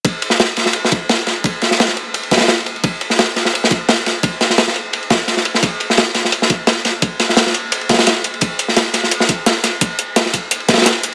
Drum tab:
RD |x---x---x---x---x---x---x---x---|x---x---x---x---x-x-xxx-x-x-x-x-|x---x---x---x---x---x---x---x---|x---x---x---x---x-x-x---x---x---|
HH |x---x---x---x---x---x---x---x---|x---x---x---x---x---x---x---x---|x---x---x---x---x---x---x---x---|x---x---x---x---x---x---x---x---|
SD |------o-o---o-o---o-----o---o---|----o-o-o-o---------ooo-o-------|------o-o---o-o---o-----o---o---|----o-o-o-o---------o---o-o---o-|
BD |o-------------------o-----------|o-------------------o-----------|o-------------------o-----------|o-------------------o-----------|

RD |x---x---x---x---x---x---x---x---|x---x---x---x---x-x-xxx-x-x-x-x-|x---x---x---x---x---x---x---x---|x-------x---x---x-x-xxxxx-x-x---|
HH |x---x---x---x---x---x---x---x---|x---x---x---x---x---x---x---x---|x---x---x---x---x---x---x---x---|x---x---x---x---x---x---x---x---|
SD |------o-o---o-o---o-----o---o---|----o-o-o-o---------ooo-o-------|------o-o---o-o---o-----o---o---|--------o-o---------ooooo-------|
BD |o-------------------o-----------|o-------------------o-----------|o-------------------o-----------|o-----------o-------o-----------|